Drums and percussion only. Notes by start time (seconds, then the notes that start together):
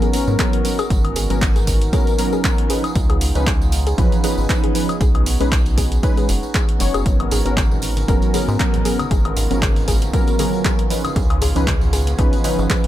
0.02 closed hi-hat, tambourine
0.13 open hi-hat, tambourine
0.27 tambourine
0.39 kick, clap, closed hi-hat, tambourine
0.53 closed hi-hat
0.65 open hi-hat, tambourine
0.79 closed hi-hat, tambourine, high woodblock
0.90 kick, closed hi-hat, tambourine
1.05 closed hi-hat, high woodblock
1.16 open hi-hat, tambourine
1.30 closed hi-hat, tambourine
1.42 kick, clap, closed hi-hat, tambourine
1.56 closed hi-hat, tambourine
1.67 kick, open hi-hat, tambourine
1.82 closed hi-hat, tambourine
1.93 kick, closed hi-hat, tambourine
2.07 closed hi-hat, tambourine
2.19 open hi-hat, tambourine
2.33 tambourine
2.44 kick, clap, closed hi-hat, tambourine
2.58 closed hi-hat
2.70 open hi-hat, tambourine
2.84 closed hi-hat, tambourine, high woodblock
2.96 kick, closed hi-hat, tambourine
3.10 closed hi-hat, high woodblock
3.21 open hi-hat, tambourine
3.35 closed hi-hat, tambourine
3.47 kick, clap, closed hi-hat, tambourine
3.62 tambourine
3.72 open hi-hat, tambourine
3.87 closed hi-hat, tambourine
3.98 kick, closed hi-hat, tambourine
4.12 closed hi-hat, tambourine
4.24 open hi-hat, tambourine
4.38 tambourine
4.49 kick, clap, closed hi-hat, tambourine
4.64 closed hi-hat
4.75 open hi-hat, tambourine
4.89 closed hi-hat, tambourine, high woodblock
5.01 kick, closed hi-hat, tambourine
5.15 closed hi-hat, high woodblock
5.26 open hi-hat, tambourine
5.41 closed hi-hat, tambourine
5.52 kick, clap, closed hi-hat, tambourine
5.66 closed hi-hat, tambourine
5.78 kick, open hi-hat, tambourine
5.92 closed hi-hat, tambourine
6.03 kick, closed hi-hat, tambourine
6.17 closed hi-hat, tambourine
6.29 open hi-hat, tambourine
6.43 tambourine
6.54 kick, clap, closed hi-hat, tambourine
6.69 closed hi-hat
6.80 open hi-hat, tambourine
6.94 closed hi-hat, tambourine, high woodblock
7.06 kick, closed hi-hat, tambourine
7.20 closed hi-hat, high woodblock
7.31 open hi-hat, tambourine, low conga
7.46 closed hi-hat, tambourine
7.57 kick, clap, closed hi-hat, tambourine, high conga
7.71 tambourine, low conga
7.82 open hi-hat, tambourine
7.97 closed hi-hat, tambourine, muted conga
8.08 kick, closed hi-hat, tambourine
8.22 closed hi-hat, tambourine
8.34 open hi-hat, tambourine, high conga
8.48 tambourine
8.60 kick, clap, closed hi-hat, tambourine
8.74 closed hi-hat, low conga
8.85 open hi-hat, tambourine
8.99 closed hi-hat, tambourine, high conga, high woodblock
9.11 kick, closed hi-hat, tambourine
9.25 closed hi-hat, high woodblock
9.36 open hi-hat, tambourine, low conga
9.51 closed hi-hat, tambourine
9.62 kick, clap, closed hi-hat, tambourine, high conga
9.76 closed hi-hat, tambourine, low conga
9.88 kick, open hi-hat, tambourine
10.01 closed hi-hat, tambourine, muted conga
10.13 kick, closed hi-hat, tambourine
10.27 closed hi-hat, tambourine
10.39 open hi-hat, tambourine, muted conga, high conga
10.53 tambourine
10.64 kick, clap, closed hi-hat, tambourine
10.79 closed hi-hat
10.90 open hi-hat, tambourine
11.04 closed hi-hat, tambourine, muted conga, high conga, high woodblock
11.16 kick, closed hi-hat, tambourine
11.30 closed hi-hat, high woodblock
11.41 open hi-hat, tambourine, low conga
11.56 closed hi-hat, tambourine
11.67 kick, clap, closed hi-hat, tambourine, high conga
11.81 tambourine, low conga
11.93 open hi-hat, tambourine
12.07 closed hi-hat, tambourine, muted conga
12.18 kick, closed hi-hat, tambourine
12.33 closed hi-hat, tambourine
12.44 open hi-hat, tambourine, high conga
12.59 tambourine
12.70 kick, clap, closed hi-hat, tambourine
12.84 closed hi-hat, low conga